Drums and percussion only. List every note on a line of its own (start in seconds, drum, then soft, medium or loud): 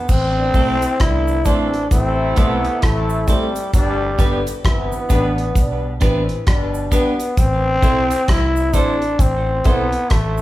0.09 kick loud
0.09 crash loud
0.09 cabasa medium
0.54 kick loud
0.54 open hi-hat soft
0.54 cabasa medium
0.82 closed hi-hat medium
0.82 cabasa medium
1.00 kick loud
1.00 cross-stick loud
1.00 closed hi-hat loud
1.28 cabasa medium
1.45 kick loud
1.45 closed hi-hat medium
1.45 cabasa medium
1.74 closed hi-hat soft
1.91 kick loud
1.91 closed hi-hat medium
1.91 cabasa medium
2.36 kick loud
2.36 closed hi-hat medium
2.36 cabasa soft
2.65 closed hi-hat medium
2.82 kick loud
2.82 cross-stick loud
2.82 closed hi-hat medium
3.10 cabasa medium
3.28 kick loud
3.28 closed hi-hat medium
3.28 cabasa medium
3.56 closed hi-hat medium
3.56 cabasa medium
3.73 kick loud
3.73 closed hi-hat medium
3.73 cabasa medium
4.19 kick loud
4.19 closed hi-hat medium
4.19 cabasa medium
4.47 closed hi-hat medium
4.47 cabasa medium
4.64 kick loud
4.64 cross-stick loud
4.64 closed hi-hat loud
4.92 cabasa medium
5.10 kick loud
5.10 closed hi-hat medium
5.10 cabasa medium
5.38 closed hi-hat soft
5.55 kick loud
5.55 closed hi-hat medium
5.55 cabasa medium
6.01 kick loud
6.01 cross-stick medium
6.01 closed hi-hat medium
6.01 cabasa soft
6.29 closed hi-hat medium
6.47 kick loud
6.47 cross-stick loud
6.47 closed hi-hat loud
6.74 cabasa soft
6.92 kick loud
6.92 closed hi-hat medium
6.92 cabasa medium
7.20 closed hi-hat medium
7.20 cabasa medium
7.37 kick loud
7.37 closed hi-hat medium
7.37 cabasa medium
7.83 kick loud
7.83 closed hi-hat medium
7.83 cabasa medium
8.11 closed hi-hat medium
8.11 cabasa medium
8.28 kick loud
8.28 cross-stick loud
8.28 closed hi-hat loud
8.56 cabasa medium
8.73 kick loud
8.73 closed hi-hat medium
8.73 cabasa medium
9.02 closed hi-hat soft
9.19 kick loud
9.19 closed hi-hat medium
9.19 cabasa medium
9.64 kick loud
9.64 closed hi-hat medium
9.64 cabasa soft
9.92 closed hi-hat medium
10.10 kick loud
10.10 cross-stick loud
10.10 closed hi-hat loud
10.38 cabasa medium